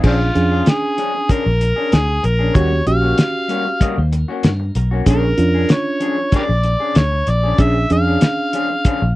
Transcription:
0.03 fingered electric bass A#1, clean electric guitar F3 C#4 D4 G#4, harmonica C4 D4 F4, reed electric piano C#4 D4 G#4, kick, crash
0.21 muted clean electric guitar stroke
0.35 fingered electric bass F2, reed electric piano C#4 D4 G#4, muted clean electric guitar stroke, closed hi-hat
0.51 clean electric guitar C#4 D4 G#4
0.66 harmonica G#4, muted clean electric guitar stroke, snare, closed hi-hat
0.98 clean electric guitar F3 C#4 D4 G#4, closed hi-hat
1.14 muted clean electric guitar stroke
1.29 clean electric guitar F3 C#4 D4 G#4, harmonica A#4, kick, closed hi-hat
1.45 fingered electric bass A#1, muted clean electric guitar stroke
1.61 muted clean electric guitar stroke, closed hi-hat
1.76 clean electric guitar C#4 D4 G#4
1.92 fingered electric bass D2, harmonica G#4, snare, closed hi-hat
2.08 muted clean electric guitar stroke
2.23 fingered electric bass A#1, harmonica A#4, muted clean electric guitar stroke, closed hi-hat
2.39 clean electric guitar C#4 D4 G#4
2.54 fingered electric bass D#2, clean electric guitar G3 A#3 C#4 F#4, reed electric piano C#4 F#4 G4, harmonica C#5, kick, closed hi-hat
2.71 muted clean electric guitar stroke
2.86 fingered electric bass A#1, reed electric piano C#4 F#4 G4, harmonica F5, muted clean electric guitar stroke, closed hi-hat
3.01 clean electric guitar A#3 C#4 F#4
3.17 muted clean electric guitar stroke, snare, closed hi-hat
3.48 clean electric guitar G3 A#3 C#4 F#4, closed hi-hat
3.65 muted clean electric guitar stroke
3.80 clean electric guitar G3 A#3 C#4 F#4 D#5, kick, closed hi-hat
3.97 fingered electric bass D#2, clean electric guitar C5, muted clean electric guitar stroke
4.12 clean electric guitar A#4, muted clean electric guitar stroke, closed hi-hat
4.28 clean electric guitar A#3 C#4 F#4 C5
4.43 fingered electric bass G2, clean electric guitar A#4, snare, closed hi-hat
4.60 muted clean electric guitar stroke
4.75 fingered electric bass B1, clean electric guitar A#4, muted clean electric guitar stroke, closed hi-hat
4.91 clean electric guitar A#3 C#4 F#4
5.06 fingered electric bass A#1, clean electric guitar F3 C#4 D4 G#4, reed electric piano C#4 D4 G#4, harmonica A#4, kick, closed hi-hat
5.24 muted clean electric guitar stroke
5.37 fingered electric bass F2, reed electric piano C#4 D4 F4, muted clean electric guitar stroke, closed hi-hat
5.54 clean electric guitar C#4 D4 G#4
5.69 harmonica C#5, muted clean electric guitar stroke, snare, closed hi-hat
6.00 clean electric guitar F3 C#4 D4 G#4, closed hi-hat
6.17 muted clean electric guitar stroke
6.32 clean electric guitar F3 C#4 D4 G#4, harmonica G4 A#4 D5, kick, closed hi-hat
6.49 fingered electric bass A#1, muted clean electric guitar stroke
6.63 muted clean electric guitar stroke, closed hi-hat
6.80 clean electric guitar C#4 D4 G#4
6.95 fingered electric bass D2, harmonica C#5, snare, closed hi-hat
7.12 muted clean electric guitar stroke
7.27 fingered electric bass A#1, harmonica D5, muted clean electric guitar stroke, closed hi-hat
7.44 clean electric guitar C#4 D4 G#4
7.58 fingered electric bass A#1, clean electric guitar F3 C#4 D4 G#4, reed electric piano C#4 D4 G#4, harmonica E5, kick, closed hi-hat
7.75 muted clean electric guitar stroke
7.90 fingered electric bass F2, reed electric piano C#4 D4 G#4, harmonica F5, muted clean electric guitar stroke, closed hi-hat
8.06 clean electric guitar C#4 D4 G#4
8.21 muted clean electric guitar stroke, snare, closed hi-hat
8.53 clean electric guitar F3 C#4 D4 G#4, closed hi-hat
8.70 muted clean electric guitar stroke
8.85 clean electric guitar F3 C#4 D4 G#4, kick, closed hi-hat
9.02 fingered electric bass A#1, muted clean electric guitar stroke

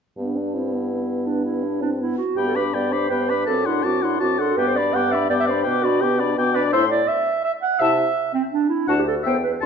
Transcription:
0.17 bassoon G2, french horn B3, clarinet D4
0.36 french horn D4
0.54 french horn C4, clarinet E4
0.72 french horn B3
1.26 clarinet D4
1.45 clarinet E4
1.63 french horn D4
1.81 french horn C4, clarinet D4
1.99 french horn B3, clarinet E4
2.18 clarinet F#4
2.36 bassoon G2, french horn B3, clarinet G4, oboe G5, flute B5
2.47 clarinet A4
2.55 french horn D4, clarinet B4, oboe B5, flute D6
2.73 bassoon G2, french horn B3, clarinet D5, oboe G5, flute B5
2.92 french horn D4, clarinet C5, oboe B5, flute D6
3.10 bassoon G2, french horn B3, clarinet B4, oboe G5, flute B5
3.21 clarinet C5
3.29 french horn D4, clarinet B4, oboe B5, flute D6
3.46 bassoon F#2, french horn C4, clarinet A4, oboe A5, flute D6
3.66 french horn D4, clarinet E4, oboe F#5, flute C6
3.83 bassoon F#2, french horn C4, clarinet F#4, oboe A5, flute D6
4.02 french horn D4, clarinet E4, oboe F#5, flute C6
4.20 bassoon F#2, french horn C4, clarinet F#4, oboe A5, flute D6
4.39 french horn D4, clarinet A4, oboe F#5, flute C6
4.57 bassoon G2, french horn B3, clarinet B4, oboe G5, flute D6
4.67 clarinet C5
4.75 french horn D4, clarinet D5, oboe D5, flute B5
4.93 bassoon G2, french horn B3, clarinet F#5, oboe G5, flute D6
5.11 french horn D4, oboe D5, clarinet E5, flute B5
5.30 bassoon G2, french horn B3, clarinet D5, oboe G5, flute D6
5.40 clarinet E5
5.47 french horn D4, clarinet C5, oboe D5
5.51 flute B5
5.64 bassoon B2, french horn B3, clarinet B4, oboe G5
5.68 flute D6
5.83 french horn D4, clarinet F#4, oboe D5, flute B5
6.01 bassoon B2, french horn B3, clarinet G4, oboe G5, flute D6
6.20 french horn D4, oboe D5, flute B5
6.37 bassoon B2, french horn B3, oboe G5, flute D6
6.54 french horn D4, clarinet B4, oboe D5, flute B5
6.72 bassoon A2, french horn E4, clarinet C5, oboe E5, flute C6
6.90 clarinet D5
7.08 clarinet E5
7.44 clarinet E5
7.62 clarinet F#5
7.79 bassoon C3, french horn E4, oboe E5, clarinet E5, flute A5
8.34 clarinet C4
8.52 clarinet D4
8.69 clarinet E4
8.88 bassoon D2, french horn D4, clarinet F#4, oboe F#5, flute A5
8.99 clarinet G4
9.07 clarinet A4
9.23 bassoon E2, french horn B3, clarinet C5, oboe E5, flute G5
9.44 clarinet B4
9.61 bassoon D2, clarinet F#4, oboe A5, flute C6

